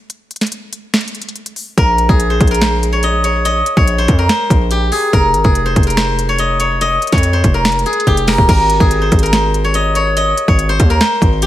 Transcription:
0.10 closed hi-hat medium
0.31 closed hi-hat soft
0.36 closed hi-hat medium
0.41 snare medium
0.41 closed hi-hat medium
0.46 closed hi-hat medium
0.52 closed hi-hat medium
0.73 closed hi-hat medium
0.94 snare loud
0.94 closed hi-hat medium
1.01 closed hi-hat medium
1.08 closed hi-hat medium
1.15 closed hi-hat soft
1.22 closed hi-hat medium
1.29 closed hi-hat medium
1.36 closed hi-hat soft
1.46 closed hi-hat medium
1.56 open hi-hat medium
1.78 2.08 A#1 loud
1.78 2.51 A#4 loud
1.78 kick loud
1.78 closed hi-hat medium
1.98 closed hi-hat medium
2.09 2.39 A#1 loud
2.09 4.37 G#4 medium
2.09 kick loud
2.20 closed hi-hat medium
2.30 2.61 C5 medium
2.40 3.62 A#1 loud
2.40 kick medium
2.40 closed hi-hat medium
2.48 4.18 A#4 medium
2.48 closed hi-hat medium
2.54 closed hi-hat medium
2.61 2.99 C5 medium
2.61 snare loud
2.61 closed hi-hat medium
2.83 closed hi-hat medium
2.93 3.24 C#5 medium
3.03 3.45 D#5 medium
3.03 closed hi-hat medium
3.24 3.77 C#5 medium
3.24 closed hi-hat medium
3.45 5.23 D#5 loud
3.45 closed hi-hat medium
3.66 closed hi-hat medium
3.77 4.07 A#1 loud
3.77 4.04 C#5 medium
3.77 kick loud
3.87 closed hi-hat medium
3.98 4.29 C5 medium
4.08 4.29 F2 loud
4.08 kick medium
4.08 closed hi-hat medium
4.18 5.13 A#4 medium
4.29 5.65 C5 medium
4.29 snare loud
4.29 closed hi-hat medium
4.50 4.91 A#1 loud
4.50 kick loud
4.50 closed hi-hat medium
4.71 4.98 G4 medium
4.71 closed hi-hat medium
4.92 5.44 G#4 medium
4.92 open hi-hat medium
5.13 5.36 F1 loud
5.13 5.86 A#4 loud
5.13 kick loud
5.13 closed hi-hat medium
5.34 5.44 G#1 medium
5.34 closed hi-hat medium
5.44 5.75 F1 loud
5.44 7.71 G#4 medium
5.44 kick loud
5.55 closed hi-hat medium
5.66 5.97 C5 medium
5.76 6.98 F1 loud
5.76 kick medium
5.76 closed hi-hat medium
5.83 7.54 A#4 medium
5.83 closed hi-hat medium
5.90 closed hi-hat medium
5.97 6.35 C5 medium
5.97 snare loud
5.97 closed hi-hat medium
6.19 closed hi-hat medium
6.29 6.60 C#5 medium
6.39 6.81 D#5 medium
6.39 closed hi-hat medium
6.60 7.12 C#5 medium
6.60 closed hi-hat medium
6.81 8.60 D#5 loud
6.81 closed hi-hat medium
7.02 closed hi-hat soft
7.07 closed hi-hat medium
7.12 7.43 F2 loud
7.12 7.39 C#5 medium
7.12 kick loud
7.12 snare medium
7.12 closed hi-hat medium
7.18 closed hi-hat medium
7.23 closed hi-hat medium
7.33 9.01 C5 medium
7.44 7.84 F1 loud
7.44 kick medium
7.44 closed hi-hat medium
7.54 8.28 A#4 medium
7.65 snare loud
7.65 closed hi-hat medium
7.72 closed hi-hat medium
7.79 closed hi-hat medium
7.86 8.13 G#4 medium
7.86 closed hi-hat soft
7.93 closed hi-hat medium
8.00 closed hi-hat medium
8.07 8.37 F1 loud
8.07 8.87 G4 medium
8.07 kick medium
8.07 closed hi-hat soft
8.17 closed hi-hat medium
8.27 8.48 A#4 medium
8.27 snare medium
8.27 open hi-hat medium
8.38 8.48 D#1 loud
8.38 kick medium
8.49 8.79 G#1 loud
8.49 9.22 A#4 loud
8.49 kick loud
8.49 closed hi-hat medium
8.49 crash loud
8.70 closed hi-hat medium
8.80 9.11 G#1 loud
8.80 11.08 G#4 medium
8.80 kick loud
8.91 closed hi-hat medium
9.02 9.33 C5 medium
9.12 10.34 G#1 loud
9.12 kick medium
9.12 closed hi-hat medium
9.19 10.90 A#4 medium
9.19 closed hi-hat medium
9.26 closed hi-hat medium
9.33 9.70 C5 medium
9.33 snare loud
9.33 closed hi-hat medium
9.54 closed hi-hat medium
9.64 9.95 C#5 medium
9.74 10.16 D#5 medium
9.74 closed hi-hat medium
9.95 10.48 C#5 medium
9.95 closed hi-hat medium
10.17 11.47 D#5 loud
10.17 closed hi-hat medium
10.38 closed hi-hat medium
10.48 10.78 G#1 loud
10.48 10.75 C#5 medium
10.48 kick loud
10.59 closed hi-hat medium
10.69 11.00 C5 loud
10.80 11.00 D#2 loud
10.80 kick medium
10.80 closed hi-hat medium
10.90 11.47 A#4 medium
11.01 11.47 C5 medium
11.01 snare loud
11.01 closed hi-hat medium
11.22 11.47 G#1 loud
11.22 kick loud
11.22 closed hi-hat medium
11.42 11.47 G4 medium
11.42 closed hi-hat medium

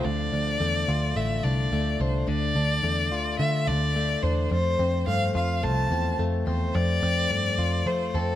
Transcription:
0.00 2.43 F3 medium
0.00 0.60 A3 medium
0.00 0.10 C4 medium
0.00 0.88 F4 medium
0.05 0.28 D2 medium
0.05 2.27 D3 medium
0.05 1.17 D5 medium
0.33 0.56 D2 medium
0.33 1.43 D4 medium
0.60 0.84 E2 medium
0.60 1.16 A3 medium
0.88 1.12 D2 medium
0.88 3.11 F4 medium
1.16 1.40 A1 medium
1.16 1.72 A3 soft
1.16 1.45 E5 medium
1.44 1.68 C2 medium
1.44 1.99 D4 medium
1.44 2.02 D5 medium
1.72 1.96 D2 medium
1.72 2.83 A3 medium
2.00 2.24 C2 medium
2.00 2.55 D4 medium
2.00 2.29 C5 medium
2.27 2.51 D2 medium
2.27 4.51 D3 medium
2.27 3.39 D5 loud
2.55 2.79 D2 medium
2.55 3.67 D4 medium
2.83 3.11 E2 medium
2.83 3.39 A3 medium
3.11 3.35 D2 medium
3.11 5.35 F4 medium
3.39 3.69 D3 medium
3.39 3.95 A3 medium
3.39 3.69 E5 medium
3.67 4.15 D2 medium
3.67 4.22 D4 medium
3.67 4.24 D5 medium
3.96 5.07 A3 medium
4.22 4.47 E2 medium
4.22 4.57 D4 medium
4.22 4.51 C5 medium
4.51 4.75 F2 loud
4.51 6.74 F2 medium
4.51 5.03 C5 loud
4.79 5.03 F2 loud
4.79 5.91 C4 medium
5.07 5.31 G2 medium
5.07 5.63 A3 medium
5.07 5.33 F5 loud
5.35 5.65 F2 loud
5.35 7.58 F4 medium
5.35 5.65 F5 medium
5.63 5.87 C2 medium
5.63 6.19 A3 medium
5.63 6.19 A5 medium
5.91 6.14 E2 medium
5.91 6.46 C4 medium
6.19 6.43 F2 medium
6.19 7.30 A3 medium
6.47 6.70 E2 medium
6.47 7.02 C4 medium
6.47 6.76 C5 medium
6.75 6.98 F2 loud
6.75 8.35 F2 medium
6.75 7.88 D5 loud
7.03 7.26 F2 medium
7.03 8.14 C4 medium
7.31 7.54 G2 medium
7.31 7.86 A3 medium
7.58 7.82 F2 medium
7.58 8.35 F4 medium
7.86 8.16 F3 medium
7.86 8.35 A3 medium
7.86 8.16 C5 medium
8.14 8.35 F2 medium
8.14 8.35 C4 medium
8.14 8.35 A4 medium

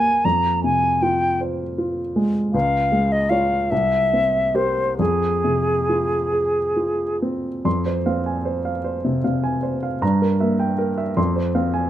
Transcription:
0.00 0.21 E2 soft
0.00 0.27 E3 soft
0.00 0.25 A#3 soft
0.00 0.26 G4 soft
0.00 0.26 C5 soft
0.00 0.26 G#5 medium
0.25 2.50 F2 soft
0.25 0.63 A#5 medium
0.64 1.25 C3 soft
0.64 1.04 G#5 soft
1.02 1.63 F4 soft
1.02 1.40 G5 soft
1.41 2.01 C5 soft
1.78 2.39 F4 soft
2.16 2.54 G#3 soft
2.53 3.68 C#2 soft
2.53 3.14 F5 medium
2.92 3.55 G#3 soft
3.12 3.31 D#5 medium
3.29 3.67 F4 soft
3.29 3.67 C#5 soft
3.29 3.72 F5 soft
3.71 4.95 C2 soft
3.71 4.57 E5 medium
4.13 4.82 C4 soft
4.55 4.95 G4 soft
4.55 4.95 A#4 soft
4.55 4.98 C5 medium
4.99 7.61 F2 soft
4.99 7.17 G#4 soft
5.44 6.15 C3 soft
5.89 6.59 F4 soft
6.32 7.03 G#4 soft
6.76 7.48 F4 soft
7.22 7.66 C4 soft
7.65 9.98 F2 soft
7.65 7.98 C6 soft
7.86 8.18 C5 soft
8.06 8.69 C4 soft
8.06 8.38 F5 soft
8.26 8.57 G#5 soft
8.45 8.77 C5 soft
8.65 8.96 F5 soft
8.84 9.16 C5 soft
9.05 9.23 C3 soft
9.24 9.87 C3 soft
9.24 9.55 F5 soft
9.44 9.75 G#5 soft
9.63 9.94 C5 soft
9.83 10.02 F5 soft
10.02 11.14 G2 soft
10.02 10.33 A#5 soft
10.22 10.53 A#4 soft
10.40 11.02 A#3 soft
10.40 10.72 E5 soft
10.60 10.91 G5 soft
10.78 11.10 A#4 soft
10.98 11.17 E5 soft
11.17 11.90 F2 soft
11.17 11.48 C6 soft
11.36 11.66 C5 soft
11.55 11.90 C4 soft
11.55 11.86 F5 soft
11.74 11.90 G#5 soft

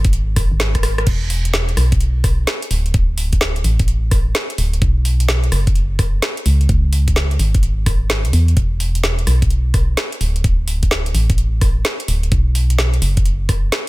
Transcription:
0.00 0.51 G#1 medium
0.05 kick loud
0.05 closed hi-hat medium
0.13 closed hi-hat medium
0.36 kick loud
0.36 cross-stick medium
0.36 open hi-hat loud
0.51 1.05 G#1 medium
0.60 snare loud
0.75 kick medium
0.75 cross-stick medium
0.75 closed hi-hat medium
0.83 cross-stick medium
0.83 open hi-hat loud
0.98 cross-stick medium
0.98 closed hi-hat soft
1.07 1.76 E1 loud
1.07 kick loud
1.07 closed hi-hat medium
1.07 crash medium
1.30 open hi-hat loud
1.45 closed hi-hat medium
1.54 snare loud
1.69 closed hi-hat soft
1.77 2.46 B1 medium
1.77 cross-stick medium
1.77 open hi-hat loud
1.92 kick loud
1.92 closed hi-hat medium
2.01 closed hi-hat medium
2.24 kick loud
2.24 cross-stick medium
2.24 open hi-hat loud
2.47 snare loud
2.62 closed hi-hat medium
2.71 2.92 D1 medium
2.71 open hi-hat loud
2.86 closed hi-hat soft
2.94 3.63 D1 loud
2.94 kick loud
2.94 closed hi-hat medium
3.18 open hi-hat loud
3.33 kick medium
3.33 closed hi-hat medium
3.41 snare loud
3.56 closed hi-hat soft
3.64 4.33 A1 medium
3.64 open hi-hat loud
3.79 kick loud
3.79 closed hi-hat medium
3.88 closed hi-hat medium
4.11 kick loud
4.11 cross-stick medium
4.11 open hi-hat loud
4.35 snare loud
4.50 closed hi-hat medium
4.58 4.80 D1 medium
4.58 open hi-hat loud
4.73 closed hi-hat soft
4.82 5.51 B1 loud
4.82 kick loud
4.82 closed hi-hat medium
5.05 open hi-hat loud
5.20 closed hi-hat medium
5.29 snare loud
5.44 closed hi-hat soft
5.52 6.21 F#1 medium
5.52 cross-stick medium
5.52 open hi-hat loud
5.67 kick loud
5.67 closed hi-hat medium
5.75 closed hi-hat medium
5.99 kick loud
5.99 cross-stick medium
5.99 open hi-hat loud
6.22 snare loud
6.37 closed hi-hat soft
6.46 6.67 C#2 medium
6.46 open hi-hat loud
6.61 closed hi-hat soft
6.69 7.38 C#2 loud
6.69 kick loud
6.69 closed hi-hat medium
6.93 open hi-hat loud
7.08 kick medium
7.08 closed hi-hat medium
7.16 snare loud
7.31 closed hi-hat soft
7.39 8.26 G#1 medium
7.39 open hi-hat loud
7.55 kick loud
7.55 closed hi-hat medium
7.63 closed hi-hat medium
7.86 kick loud
7.86 cross-stick medium
7.86 open hi-hat loud
8.10 snare loud
8.25 8.32 C#2 loud
8.25 closed hi-hat soft
8.33 8.55 E2 medium
8.33 open hi-hat loud
8.48 closed hi-hat soft
8.57 9.26 E1 loud
8.57 kick loud
8.57 closed hi-hat medium
8.80 open hi-hat loud
8.95 closed hi-hat medium
9.04 snare loud
9.19 closed hi-hat soft
9.27 9.96 B1 medium
9.27 cross-stick medium
9.27 open hi-hat loud
9.42 kick loud
9.42 closed hi-hat medium
9.50 closed hi-hat medium
9.74 kick loud
9.74 cross-stick medium
9.74 open hi-hat loud
9.97 snare loud
10.12 closed hi-hat medium
10.21 10.43 D1 medium
10.21 open hi-hat loud
10.36 closed hi-hat soft
10.44 11.13 D1 loud
10.44 kick loud
10.44 closed hi-hat medium
10.68 open hi-hat loud
10.83 kick medium
10.83 closed hi-hat medium
10.91 snare loud
11.06 closed hi-hat soft
11.15 11.83 A1 medium
11.15 open hi-hat loud
11.30 kick loud
11.30 closed hi-hat medium
11.38 closed hi-hat medium
11.61 kick loud
11.61 cross-stick medium
11.61 open hi-hat loud
11.85 snare loud
12.00 closed hi-hat medium
12.08 12.30 D1 medium
12.08 open hi-hat loud
12.23 closed hi-hat soft
12.32 13.01 B1 loud
12.32 kick loud
12.32 closed hi-hat medium
12.55 open hi-hat loud
12.70 closed hi-hat medium
12.79 snare loud
12.94 closed hi-hat soft
13.02 13.71 F#1 medium
13.02 open hi-hat loud
13.17 kick loud
13.17 closed hi-hat medium
13.25 closed hi-hat medium
13.49 kick loud
13.49 cross-stick medium
13.49 open hi-hat loud
13.72 snare loud

